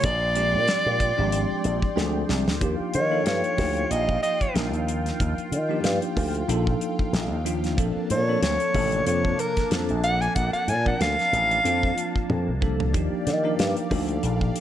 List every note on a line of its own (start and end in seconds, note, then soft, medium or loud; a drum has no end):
0.00 0.56 A#1 medium
0.00 2.59 D5 medium
0.00 2.59 G5 medium
0.00 2.59 C6 medium
0.00 kick loud
0.00 closed hi-hat medium
0.04 1.98 D5 loud
0.35 1.09 F3 medium
0.35 1.09 G#3 medium
0.35 1.09 C4 medium
0.35 1.10 D4 medium
0.35 1.10 G4 medium
0.35 closed hi-hat medium
0.54 0.66 A#2 medium
0.68 snare loud
0.68 closed hi-hat medium
0.86 1.12 A#2 medium
1.00 kick medium
1.00 closed hi-hat medium
1.17 1.44 G#1 medium
1.17 1.89 F3 medium
1.17 1.90 G#3 medium
1.17 1.90 C4 medium
1.17 1.90 D4 medium
1.17 1.90 G4 loud
1.32 closed hi-hat medium
1.64 1.79 A#1 medium
1.64 closed hi-hat medium
1.82 kick medium
1.96 2.23 D2 medium
1.96 2.55 F3 medium
1.96 2.55 G#3 medium
1.96 2.56 C4 medium
1.96 2.56 D4 medium
1.96 2.56 G#4 medium
1.96 2.27 G5 medium
1.96 snare medium
2.29 2.46 C2 medium
2.29 2.59 D5 medium
2.29 snare medium
2.48 2.61 D2 medium
2.48 snare medium
2.60 2.76 D#2 medium
2.60 3.06 F3 medium
2.60 3.06 A#3 medium
2.60 3.06 D4 medium
2.60 3.07 D#4 medium
2.60 7.74 F4 medium
2.60 3.07 G4 medium
2.60 7.74 F5 medium
2.60 7.74 G5 medium
2.60 kick loud
2.60 closed hi-hat medium
2.80 muted slap bass stroke soft
2.94 3.20 D#3 medium
2.94 3.26 C#5 medium
2.94 closed hi-hat medium
3.10 3.53 F3 medium
3.10 3.53 A#3 medium
3.10 3.54 D4 medium
3.10 3.54 D#4 medium
3.10 3.54 A4 medium
3.26 3.41 G2 medium
3.26 3.92 C#5 medium
3.26 snare loud
3.26 closed hi-hat medium
3.44 closed hi-hat soft
3.57 3.84 D2 medium
3.57 4.46 F3 medium
3.57 4.46 A#3 medium
3.57 4.46 D#4 medium
3.57 4.46 F4 medium
3.57 4.47 G4 medium
3.57 kick medium
3.57 snare soft
3.57 open hi-hat medium
3.77 closed hi-hat soft
3.91 4.16 A#1 medium
3.91 4.22 D#5 medium
3.91 closed hi-hat medium
4.09 kick medium
4.23 4.54 D#5 medium
4.23 closed hi-hat medium
4.41 kick medium
4.41 closed hi-hat soft
4.54 4.73 A#1 medium
4.54 5.57 F3 medium
4.54 5.57 A#3 medium
4.54 5.57 D4 medium
4.54 5.57 D#4 medium
4.54 5.57 A#4 medium
4.54 snare loud
4.54 closed hi-hat medium
4.73 5.10 D#2 medium
4.73 closed hi-hat soft
4.88 closed hi-hat medium
5.06 snare soft
5.06 closed hi-hat soft
5.20 5.34 D#2 medium
5.20 kick loud
5.20 closed hi-hat medium
5.38 muted slap bass stroke soft
5.38 closed hi-hat soft
5.51 5.77 D#3 medium
5.51 closed hi-hat medium
5.69 6.41 F3 medium
5.69 6.41 A#3 medium
5.69 6.42 D4 medium
5.69 6.42 D#4 medium
5.69 6.42 G4 medium
5.84 5.98 G2 medium
5.84 snare loud
5.84 closed hi-hat medium
6.02 closed hi-hat soft
6.17 6.42 D2 medium
6.17 kick medium
6.17 open hi-hat medium
6.35 closed hi-hat soft
6.48 6.74 A#1 medium
6.48 7.36 F3 medium
6.48 7.37 A#3 medium
6.48 7.37 D4 medium
6.48 7.37 D#4 medium
6.48 7.37 A4 loud
6.48 closed hi-hat medium
6.67 kick medium
6.81 closed hi-hat medium
6.99 kick medium
7.13 7.31 A#1 medium
7.13 snare loud
7.13 closed hi-hat medium
7.31 7.78 D#2 medium
7.45 7.75 F3 medium
7.45 7.75 A#3 medium
7.45 7.75 D4 medium
7.45 7.75 D#4 medium
7.45 7.75 F4 medium
7.45 closed hi-hat medium
7.64 snare soft
7.64 closed hi-hat soft
7.77 7.92 A#1 medium
7.77 8.22 F3 medium
7.77 8.22 A#3 medium
7.77 12.91 A#3 medium
7.77 8.22 C4 medium
7.77 12.90 D4 medium
7.77 8.23 D4 medium
7.77 8.23 A4 medium
7.77 12.90 A5 medium
7.77 kick loud
7.77 closed hi-hat medium
7.96 muted slap bass stroke soft
8.10 8.36 A#2 medium
8.10 8.42 C#5 medium
8.10 closed hi-hat medium
8.28 8.70 F3 medium
8.28 8.71 A#3 medium
8.28 8.71 C4 medium
8.28 8.71 D4 medium
8.28 8.71 A4 medium
8.42 8.57 D2 medium
8.42 9.05 C#5 medium
8.42 snare loud
8.42 closed hi-hat medium
8.60 closed hi-hat soft
8.73 9.00 A1 loud
8.73 9.63 C3 medium
8.73 9.62 F3 medium
8.73 9.63 A#3 medium
8.73 9.63 D4 medium
8.73 9.63 A4 medium
8.73 kick medium
8.73 open hi-hat medium
8.92 closed hi-hat soft
9.07 9.32 F2 medium
9.07 9.41 C#5 medium
9.07 closed hi-hat medium
9.25 kick medium
9.39 9.71 A#4 medium
9.39 closed hi-hat medium
9.57 kick medium
9.57 snare soft
9.57 closed hi-hat soft
9.70 9.91 F2 medium
9.70 10.73 F3 medium
9.70 10.73 A#3 medium
9.70 10.74 C4 medium
9.70 10.74 D4 medium
9.70 10.74 A4 medium
9.70 snare loud
9.70 closed hi-hat medium
9.89 10.27 A#1 medium
9.89 closed hi-hat soft
10.04 10.23 F#5 loud
10.04 closed hi-hat medium
10.21 10.35 G#5 medium
10.21 closed hi-hat soft
10.35 10.50 A#1 medium
10.35 10.52 F#5 medium
10.35 kick loud
10.35 closed hi-hat medium
10.53 10.71 F#5 medium
10.53 closed hi-hat soft
10.68 10.94 A#2 medium
10.68 10.85 G#5 medium
10.68 closed hi-hat medium
10.85 11.57 F3 medium
10.85 11.58 A#3 medium
10.85 11.58 C4 medium
10.85 11.58 D4 medium
10.85 11.58 A#4 medium
10.85 11.00 F#5 medium
10.85 kick medium
11.00 11.15 D2 medium
11.00 12.26 F5 loud
11.00 snare loud
11.00 closed hi-hat medium
11.19 snare soft
11.19 closed hi-hat soft
11.33 11.58 A1 medium
11.33 closed hi-hat medium
11.51 closed hi-hat soft
11.64 11.91 F2 medium
11.64 12.53 F3 medium
11.64 12.53 A#3 medium
11.64 12.53 C4 medium
11.64 12.53 D4 medium
11.64 12.54 F4 medium
11.64 closed hi-hat medium
11.83 kick medium
11.98 closed hi-hat medium
12.16 kick medium
12.30 12.49 F2 medium
12.30 high tom medium
12.48 12.94 C2 medium
12.61 12.91 F3 medium
12.61 12.91 A#3 medium
12.61 12.91 C4 medium
12.61 12.92 D4 medium
12.61 12.92 A4 medium
12.61 kick medium
12.80 floor tom medium
12.93 13.09 D#2 medium
12.93 13.38 F3 medium
12.93 13.39 A#3 medium
12.93 13.39 D4 medium
12.93 13.39 D#4 medium
12.93 14.60 G4 medium
12.93 13.39 G4 medium
12.93 14.60 D5 medium
12.93 14.60 F5 medium
12.93 kick loud
12.93 closed hi-hat medium
13.13 muted slap bass stroke soft
13.27 13.52 D#3 medium
13.27 snare soft
13.27 closed hi-hat medium
13.43 13.86 F3 medium
13.43 13.86 A#3 medium
13.43 13.87 D4 medium
13.43 13.87 D#4 medium
13.43 13.87 A#4 loud
13.59 13.74 G2 medium
13.59 snare loud
13.59 closed hi-hat medium
13.77 closed hi-hat soft
13.90 14.17 D2 loud
13.90 14.60 F3 medium
13.90 14.60 A#3 medium
13.90 14.60 D4 medium
13.90 14.60 D#4 medium
13.90 14.60 A4 medium
13.90 kick medium
13.90 open hi-hat medium
14.09 closed hi-hat soft
14.23 14.49 A#1 medium
14.23 closed hi-hat medium
14.41 kick medium
14.56 closed hi-hat medium